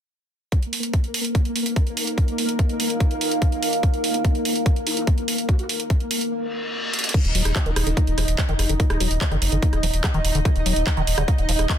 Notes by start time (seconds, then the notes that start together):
0.52 A#3 D#4 A#4, kick, closed hi-hat
0.62 closed hi-hat
0.73 open hi-hat
0.80 A#4, closed hi-hat
0.94 kick, closed hi-hat
1.04 closed hi-hat
1.14 open hi-hat
1.25 F5, closed hi-hat
1.35 kick, closed hi-hat
1.45 closed hi-hat
1.56 open hi-hat
1.66 closed hi-hat
1.76 kick, closed hi-hat
1.87 closed hi-hat
1.97 open hi-hat
2.07 closed hi-hat
2.18 kick, closed hi-hat
2.28 closed hi-hat
2.38 open hi-hat
2.49 closed hi-hat
2.59 kick, closed hi-hat
2.69 closed hi-hat
2.80 open hi-hat
2.90 closed hi-hat
3.00 kick, closed hi-hat
3.11 closed hi-hat
3.21 open hi-hat
3.31 closed hi-hat
3.42 kick, closed hi-hat
3.52 closed hi-hat
3.63 open hi-hat
3.73 closed hi-hat
3.83 kick, closed hi-hat
3.94 closed hi-hat
4.04 open hi-hat
4.14 A#3, closed hi-hat
4.25 kick, closed hi-hat
4.35 closed hi-hat
4.45 open hi-hat
4.56 closed hi-hat
4.66 kick, closed hi-hat
4.76 closed hi-hat
4.87 D#4, open hi-hat
4.97 D#4, closed hi-hat
5.07 kick, closed hi-hat
5.18 closed hi-hat
5.28 open hi-hat
5.38 closed hi-hat
5.49 F#4, kick, closed hi-hat
5.59 F#4, closed hi-hat
5.69 open hi-hat
5.80 closed hi-hat
5.90 kick, closed hi-hat
6.00 closed hi-hat
6.11 open hi-hat
6.21 closed hi-hat
6.31 reverse cymbal
6.94 closed hi-hat
6.99 closed hi-hat
7.04 closed hi-hat
7.09 closed hi-hat
7.14 D#3 D#4 D#5, kick, closed hi-hat, crash
7.25 D#1, closed hi-hat
7.35 D#1 F#3, open hi-hat
7.45 D#1, cross-stick, closed hi-hat
7.56 F#3, kick, clap, closed hi-hat
7.66 D#1 D#3, closed hi-hat
7.76 D#1, cross-stick, open hi-hat
7.87 D#1 D3, closed hi-hat
7.97 A#3, kick, closed hi-hat
8.07 D#1, closed hi-hat
8.18 D#1 F3, cross-stick, open hi-hat
8.28 D#1, closed hi-hat
8.38 F#3, kick, clap, closed hi-hat
8.49 F1 D#3, closed hi-hat
8.59 F1, cross-stick, open hi-hat
8.69 F1 D3, closed hi-hat
8.80 D#3, kick, closed hi-hat
8.90 D#1, cross-stick, closed hi-hat
9.00 D#1 F#3, open hi-hat
9.11 D#1, closed hi-hat
9.21 F#3, kick, clap, closed hi-hat
9.31 F#1 D#3, cross-stick, closed hi-hat
9.42 F#1, open hi-hat
9.52 F#1 D3, closed hi-hat
9.62 A#3, kick, closed hi-hat
9.73 D#1, cross-stick, closed hi-hat
9.83 D#1 F3, open hi-hat
9.94 D#1, closed hi-hat
10.04 F#3, kick, cross-stick, clap, closed hi-hat
10.14 D#1 D#3, closed hi-hat
10.25 D#1, open hi-hat
10.35 D#1 D3, closed hi-hat
10.45 D#3, kick, cross-stick, closed hi-hat
10.56 D#1, closed hi-hat
10.66 D#1 F#3, open hi-hat
10.76 D#1, closed hi-hat
10.87 F#3, kick, cross-stick, clap, closed hi-hat
10.97 D#1 D#3, closed hi-hat
11.07 D#1, open hi-hat
11.18 D#1 D3, cross-stick, closed hi-hat
11.28 A#3, kick, closed hi-hat
11.38 D#1, closed hi-hat
11.49 D#1 F3, open hi-hat
11.59 D#1, cross-stick, closed hi-hat
11.69 F#3, kick, clap, closed hi-hat